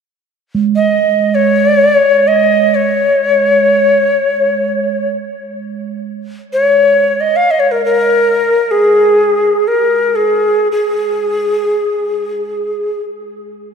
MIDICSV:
0, 0, Header, 1, 3, 480
1, 0, Start_track
1, 0, Tempo, 500000
1, 13191, End_track
2, 0, Start_track
2, 0, Title_t, "Native American-style wooden flute"
2, 0, Program_c, 0, 77
2, 729, Note_on_c, 0, 75, 67
2, 1294, Note_on_c, 0, 73, 69
2, 1308, Note_off_c, 0, 75, 0
2, 2184, Note_on_c, 0, 75, 68
2, 2199, Note_off_c, 0, 73, 0
2, 2636, Note_on_c, 0, 73, 62
2, 2651, Note_off_c, 0, 75, 0
2, 4912, Note_off_c, 0, 73, 0
2, 6269, Note_on_c, 0, 73, 61
2, 6918, Note_on_c, 0, 75, 63
2, 6932, Note_off_c, 0, 73, 0
2, 7068, Note_on_c, 0, 77, 69
2, 7082, Note_off_c, 0, 75, 0
2, 7209, Note_on_c, 0, 75, 70
2, 7223, Note_off_c, 0, 77, 0
2, 7293, Note_on_c, 0, 73, 68
2, 7308, Note_off_c, 0, 75, 0
2, 7406, Note_on_c, 0, 70, 64
2, 7420, Note_off_c, 0, 73, 0
2, 7526, Note_off_c, 0, 70, 0
2, 7538, Note_on_c, 0, 70, 79
2, 8362, Note_on_c, 0, 68, 67
2, 8377, Note_off_c, 0, 70, 0
2, 9289, Note_on_c, 0, 70, 57
2, 9303, Note_off_c, 0, 68, 0
2, 9750, Note_on_c, 0, 68, 61
2, 9765, Note_off_c, 0, 70, 0
2, 10254, Note_off_c, 0, 68, 0
2, 10288, Note_on_c, 0, 68, 56
2, 12473, Note_off_c, 0, 68, 0
2, 13191, End_track
3, 0, Start_track
3, 0, Title_t, "Singing bowl"
3, 0, Program_c, 1, 14
3, 525, Note_on_c, 1, 56, 34
3, 8038, Note_off_c, 1, 56, 0
3, 13191, End_track
0, 0, End_of_file